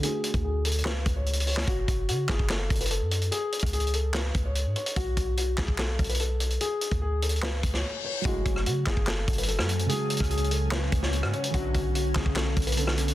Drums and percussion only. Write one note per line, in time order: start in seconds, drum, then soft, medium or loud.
0.03 closed hi-hat medium
0.24 closed hi-hat medium
0.34 kick medium
0.34 closed hi-hat soft
0.65 closed hi-hat medium
0.72 closed hi-hat medium
0.78 closed hi-hat soft
0.85 snare loud
0.85 clap medium
1.06 kick loud
1.06 closed hi-hat medium
1.26 closed hi-hat soft
1.33 closed hi-hat medium
1.40 closed hi-hat medium
1.47 open hi-hat medium
1.57 snare loud
1.57 clap medium
1.67 kick loud
1.67 closed hi-hat medium
1.88 kick loud
1.88 closed hi-hat medium
2.09 closed hi-hat medium
2.29 kick medium
2.29 snare medium
2.29 clap medium
2.39 kick loud
2.49 snare loud
2.49 clap medium
2.70 kick loud
2.70 closed hi-hat soft
2.75 closed hi-hat medium
2.81 closed hi-hat medium
2.86 closed hi-hat medium
2.91 closed hi-hat medium
3.11 closed hi-hat medium
3.22 closed hi-hat soft
3.32 closed hi-hat medium
3.52 closed hi-hat medium
3.59 kick medium
3.59 closed hi-hat medium
3.66 closed hi-hat medium
3.73 closed hi-hat medium
3.80 closed hi-hat soft
3.87 closed hi-hat soft
3.94 closed hi-hat medium
4.14 snare loud
4.14 clap medium
4.34 kick loud
4.34 closed hi-hat medium
4.55 closed hi-hat medium
4.76 closed hi-hat soft
4.76 open hi-hat medium
4.86 closed hi-hat medium
4.96 kick loud
4.96 closed hi-hat medium
5.17 kick medium
5.17 closed hi-hat medium
5.37 closed hi-hat medium
5.58 kick medium
5.58 snare medium
5.58 clap medium
5.68 kick loud
5.78 snare loud
5.78 clap medium
5.99 kick loud
5.99 closed hi-hat soft
6.04 closed hi-hat medium
6.09 closed hi-hat medium
6.15 closed hi-hat medium
6.20 closed hi-hat medium
6.40 closed hi-hat medium
6.50 closed hi-hat soft
6.61 closed hi-hat medium
6.81 closed hi-hat medium
6.91 kick medium
6.91 closed hi-hat soft
7.22 closed hi-hat medium
7.29 closed hi-hat medium
7.36 closed hi-hat soft
7.42 snare loud
7.42 clap loud
7.63 kick loud
7.63 closed hi-hat medium
7.74 snare medium
8.25 kick loud
8.25 closed hi-hat medium
8.46 kick medium
8.46 closed hi-hat medium
8.56 cross-stick medium
8.66 closed hi-hat medium
8.86 kick loud
8.86 snare loud
8.86 clap medium
8.97 kick loud
9.07 snare loud
9.07 clap loud
9.28 kick loud
9.28 closed hi-hat soft
9.33 closed hi-hat medium
9.38 closed hi-hat medium
9.43 closed hi-hat medium
9.48 closed hi-hat medium
9.59 cross-stick loud
9.59 snare medium
9.69 closed hi-hat medium
9.79 closed hi-hat soft
9.89 closed hi-hat medium
10.10 closed hi-hat medium
10.17 kick medium
10.17 cross-stick medium
10.17 closed hi-hat medium
10.24 closed hi-hat medium
10.31 closed hi-hat medium
10.37 closed hi-hat soft
10.44 closed hi-hat soft
10.51 closed hi-hat medium
10.71 snare loud
10.71 clap loud
10.92 kick loud
10.92 closed hi-hat medium
11.02 snare medium
11.13 closed hi-hat medium
11.23 cross-stick medium
11.33 closed hi-hat medium
11.33 open hi-hat medium
11.44 closed hi-hat medium
11.54 kick loud
11.54 closed hi-hat medium
11.74 kick loud
11.74 closed hi-hat medium
11.95 closed hi-hat medium
12.15 kick medium
12.15 snare loud
12.15 clap medium
12.26 kick loud
12.36 snare loud
12.36 clap loud
12.57 kick loud
12.57 closed hi-hat soft
12.62 closed hi-hat medium
12.67 closed hi-hat medium
12.72 closed hi-hat medium
12.77 closed hi-hat medium
12.87 cross-stick medium
12.87 snare medium
12.98 closed hi-hat medium
13.08 closed hi-hat soft